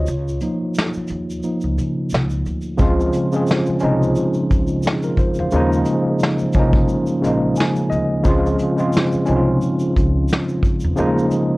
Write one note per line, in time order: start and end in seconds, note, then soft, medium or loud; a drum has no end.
0.00 1.74 F4 medium
0.00 1.73 C#5 medium
0.07 0.37 C#2 loud
0.07 shaker medium
0.28 shaker soft
0.41 0.89 F3 medium
0.41 0.89 A#3 soft
0.41 0.89 D#4 medium
0.41 closed hi-hat medium
0.41 shaker soft
0.74 snare loud
0.74 shaker medium
0.93 muted upright bass stroke soft
0.93 shaker medium
1.07 1.38 D#2 medium
1.07 closed hi-hat medium
1.07 shaker soft
1.30 shaker soft
1.43 1.74 F3 soft
1.43 1.74 A#3 soft
1.43 1.74 D#4 medium
1.43 shaker medium
1.61 1.76 C#2 medium
1.61 shaker soft
1.78 2.14 C#3 medium
1.78 closed hi-hat medium
1.78 shaker medium
2.10 2.41 C#2 medium
2.10 shaker medium
2.14 snare loud
2.30 shaker soft
2.46 2.75 D2 medium
2.46 closed hi-hat medium
2.46 shaker soft
2.61 shaker soft
2.77 3.09 C#2 medium
2.77 3.11 C#3 loud
2.77 3.12 F3 loud
2.77 3.12 G#3 loud
2.77 3.13 C4 medium
2.77 kick loud
2.77 shaker medium
2.81 3.13 F4 loud
3.00 shaker medium
3.13 closed hi-hat medium
3.13 shaker medium
3.32 3.65 C#3 medium
3.32 3.66 F3 medium
3.32 3.66 G#3 medium
3.32 3.67 C4 medium
3.32 shaker soft
3.36 3.67 G#4 medium
3.47 snare loud
3.47 shaker medium
3.66 muted upright bass stroke soft
3.66 shaker medium
3.80 4.11 C2 medium
3.80 4.71 F3 medium
3.80 4.72 G#3 medium
3.80 4.72 C4 medium
3.80 4.71 C#4 medium
3.80 closed hi-hat medium
3.80 shaker soft
3.84 4.73 D#4 loud
4.03 shaker soft
4.15 shaker medium
4.34 shaker soft
4.51 4.80 C#2 medium
4.51 kick medium
4.51 closed hi-hat medium
4.51 shaker soft
4.67 shaker soft
4.83 5.04 D#4 soft
4.83 5.04 G#4 medium
4.83 shaker medium
4.87 snare loud
5.03 5.18 F4 medium
5.03 5.18 A#4 medium
5.03 shaker soft
5.17 5.38 F4 medium
5.17 5.37 C5 medium
5.17 kick medium
5.17 closed hi-hat medium
5.17 shaker soft
5.34 shaker soft
5.39 5.51 E2 medium
5.39 5.72 C5 medium
5.39 5.71 F5 medium
5.51 5.82 D#2 medium
5.51 6.18 C#3 loud
5.51 6.18 F3 medium
5.51 6.19 G#3 loud
5.51 6.19 A#3 loud
5.51 shaker medium
5.56 6.20 D#4 loud
5.73 shaker soft
5.85 closed hi-hat medium
5.85 shaker medium
6.19 snare loud
6.19 shaker medium
6.39 muted upright bass stroke soft
6.39 shaker soft
6.53 6.84 C2 medium
6.53 7.00 F3 medium
6.53 7.00 C#4 medium
6.53 kick medium
6.53 closed hi-hat medium
6.53 shaker soft
6.57 7.01 G#3 medium
6.57 7.01 A#3 medium
6.57 7.02 D#4 medium
6.73 kick loud
6.88 shaker medium
7.07 shaker soft
7.22 7.52 A#1 medium
7.22 7.88 C#3 medium
7.22 7.89 F3 medium
7.22 7.89 G#3 medium
7.22 7.90 A#3 medium
7.22 closed hi-hat medium
7.22 shaker soft
7.26 7.90 D#4 medium
7.56 7.89 G#5 medium
7.56 shaker medium
7.60 snare loud
7.76 shaker soft
7.90 8.20 D2 medium
7.90 8.22 D#5 medium
7.90 closed hi-hat medium
7.90 shaker soft
8.23 8.54 C#2 loud
8.23 8.57 C#3 loud
8.23 8.58 F3 loud
8.23 8.58 G#3 loud
8.23 8.59 C4 loud
8.23 8.59 F4 loud
8.23 kick loud
8.23 shaker medium
8.46 shaker soft
8.59 closed hi-hat medium
8.59 shaker soft
8.76 9.10 C#3 medium
8.76 9.11 F3 medium
8.76 9.11 G#3 medium
8.76 9.12 C4 medium
8.76 shaker soft
8.80 9.12 F4 medium
8.93 snare loud
8.93 shaker medium
9.12 muted upright bass stroke soft
9.12 shaker medium
9.26 9.57 C2 medium
9.26 10.16 F3 medium
9.26 10.17 G#3 medium
9.26 10.17 C4 medium
9.26 10.16 C#4 loud
9.26 closed hi-hat medium
9.26 shaker soft
9.30 9.36 D#4 medium
9.36 10.21 F4 medium
9.61 shaker medium
9.79 shaker soft
9.96 10.25 C#2 medium
9.96 kick medium
9.96 closed hi-hat medium
9.96 shaker soft
10.28 shaker medium
10.33 snare loud
10.48 shaker soft
10.63 kick medium
10.63 closed hi-hat medium
10.63 shaker soft
10.80 shaker medium
10.84 10.96 E2 medium
10.96 11.27 D#2 loud
10.96 11.57 C#3 loud
10.96 11.57 F3 loud
10.96 11.57 G#3 loud
10.96 11.57 A#3 loud
10.96 11.57 D#4 loud
10.96 shaker medium
11.18 shaker medium
11.31 closed hi-hat medium
11.31 shaker soft